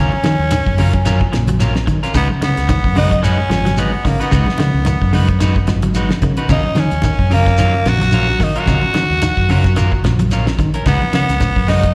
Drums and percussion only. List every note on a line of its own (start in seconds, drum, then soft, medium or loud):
0.12 high conga medium
0.24 snare medium
0.24 closed hi-hat soft
0.24 high conga loud
0.24 shekere soft
0.51 closed hi-hat medium
0.51 high conga loud
0.51 shekere medium
0.67 kick medium
0.77 open hi-hat medium
0.77 high conga medium
0.77 shekere soft
0.93 kick medium
0.93 closed hi-hat soft
0.93 low conga medium
1.05 closed hi-hat medium
1.05 shekere medium
1.21 kick medium
1.33 snare medium
1.33 closed hi-hat soft
1.33 shekere soft
1.47 closed hi-hat medium
1.47 low conga medium
1.60 closed hi-hat medium
1.60 high conga medium
1.60 shekere medium
1.75 snare medium
1.75 high conga medium
1.87 kick medium
1.87 closed hi-hat soft
1.87 shekere soft
2.03 snare soft
2.03 closed hi-hat soft
2.14 kick medium
2.14 closed hi-hat medium
2.14 low conga medium
2.14 shekere medium
2.29 high conga medium
2.42 snare medium
2.42 closed hi-hat soft
2.42 high conga loud
2.42 shekere soft
2.57 snare soft
2.57 closed hi-hat soft
2.69 kick medium
2.69 closed hi-hat medium
2.69 high conga loud
2.69 shekere medium
2.84 kick medium
2.95 open hi-hat medium
2.95 high conga medium
2.95 shekere soft
3.11 kick medium
3.11 closed hi-hat soft
3.11 low conga medium
3.24 closed hi-hat medium
3.24 shekere medium
3.51 snare medium
3.51 closed hi-hat soft
3.51 shekere soft
3.65 snare soft
3.65 closed hi-hat soft
3.65 low conga medium
3.77 closed hi-hat medium
3.77 high conga medium
3.77 shekere medium
4.05 kick medium
4.05 snare soft
4.05 open hi-hat medium
4.05 shekere soft
4.21 closed hi-hat soft
4.32 kick medium
4.32 closed hi-hat medium
4.32 low conga medium
4.32 shekere medium
4.46 snare soft
4.46 high conga medium
4.58 snare medium
4.58 closed hi-hat soft
4.58 high conga medium
4.58 shekere soft
4.85 closed hi-hat medium
4.85 high conga loud
4.85 shekere medium
5.02 kick medium
5.13 open hi-hat medium
5.13 high conga medium
5.13 shekere soft
5.28 kick medium
5.28 closed hi-hat soft
5.41 closed hi-hat medium
5.41 shekere medium
5.56 kick medium
5.67 snare medium
5.67 closed hi-hat soft
5.67 shekere soft
5.82 closed hi-hat medium
5.82 low conga medium
5.95 closed hi-hat medium
5.95 high conga medium
5.95 shekere medium
6.09 snare medium
6.09 high conga medium
6.22 kick medium
6.22 closed hi-hat soft
6.22 shekere soft
6.37 closed hi-hat soft
6.37 low conga medium
6.48 kick medium
6.48 closed hi-hat medium
6.48 low conga medium
6.48 shekere medium
6.63 high conga medium
6.75 snare medium
6.75 closed hi-hat soft
6.75 high conga loud
6.75 shekere soft
6.91 closed hi-hat soft
7.02 kick medium
7.02 closed hi-hat medium
7.02 high conga loud
7.02 shekere medium
7.19 kick medium
7.30 open hi-hat medium
7.30 high conga medium
7.30 shekere soft
7.45 kick medium
7.45 snare soft
7.45 closed hi-hat soft
7.45 low conga medium
7.58 closed hi-hat medium
7.58 shekere medium
7.85 snare medium
7.85 closed hi-hat soft
7.85 shekere soft
7.99 snare soft
7.99 closed hi-hat soft
7.99 low conga medium
8.11 closed hi-hat medium
8.11 high conga medium
8.11 shekere medium
8.27 high conga medium
8.39 kick medium
8.39 snare soft
8.39 open hi-hat soft
8.39 high conga medium
8.39 shekere soft
8.56 closed hi-hat soft
8.66 kick medium
8.66 snare soft
8.66 closed hi-hat medium
8.66 low conga medium
8.66 shekere medium
8.81 high conga medium
8.94 snare medium
8.94 closed hi-hat soft
8.94 high conga medium
8.94 shekere soft
9.22 closed hi-hat medium
9.22 high conga loud
9.22 shekere medium
9.37 kick medium
9.49 open hi-hat medium
9.49 high conga medium
9.49 shekere soft
9.64 kick medium
9.64 snare soft
9.64 closed hi-hat soft
9.76 closed hi-hat medium
9.76 shekere medium
9.92 kick medium
10.04 snare medium
10.04 closed hi-hat soft
10.04 shekere soft
10.19 closed hi-hat medium
10.19 low conga medium
10.31 closed hi-hat medium
10.31 high conga medium
10.31 shekere medium
10.47 snare medium
10.47 high conga medium
10.59 kick medium
10.59 closed hi-hat medium
10.59 high conga medium
10.59 shekere soft
10.74 closed hi-hat soft
10.86 kick medium
10.86 closed hi-hat medium
10.86 low conga medium
10.86 shekere medium
11.02 high conga medium
11.13 snare medium
11.13 closed hi-hat soft
11.13 high conga medium
11.13 shekere soft
11.29 snare soft
11.29 closed hi-hat medium
11.40 kick medium
11.40 closed hi-hat medium
11.40 high conga medium
11.40 shekere medium
11.56 kick medium
11.68 snare soft
11.68 open hi-hat medium
11.68 high conga medium
11.68 shekere soft
11.84 kick medium
11.84 closed hi-hat medium